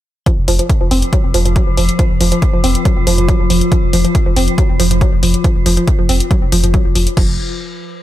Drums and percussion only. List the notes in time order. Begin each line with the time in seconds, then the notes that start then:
0.26 kick, closed hi-hat
0.48 open hi-hat
0.59 closed hi-hat
0.70 kick, closed hi-hat
0.91 open hi-hat
1.02 closed hi-hat
1.13 kick, closed hi-hat
1.34 open hi-hat
1.46 closed hi-hat
1.56 kick, closed hi-hat
1.77 open hi-hat
1.89 closed hi-hat
1.99 kick, closed hi-hat
2.21 open hi-hat
2.32 closed hi-hat
2.42 kick, closed hi-hat
2.64 open hi-hat
2.75 closed hi-hat
2.85 kick, closed hi-hat
3.07 open hi-hat
3.18 closed hi-hat
3.29 kick, closed hi-hat
3.50 open hi-hat
3.61 closed hi-hat
3.72 kick, closed hi-hat
3.93 open hi-hat
4.05 closed hi-hat
4.15 kick, closed hi-hat
4.36 open hi-hat
4.48 closed hi-hat
4.58 kick, closed hi-hat
4.80 open hi-hat
4.91 closed hi-hat
5.01 kick, closed hi-hat
5.23 open hi-hat
5.34 closed hi-hat
5.44 kick, closed hi-hat
5.66 open hi-hat
5.77 closed hi-hat
5.88 kick, closed hi-hat
6.09 open hi-hat
6.20 closed hi-hat
6.31 kick, closed hi-hat
6.52 open hi-hat
6.64 closed hi-hat
6.74 kick, closed hi-hat
6.95 open hi-hat
7.07 closed hi-hat
7.17 kick, crash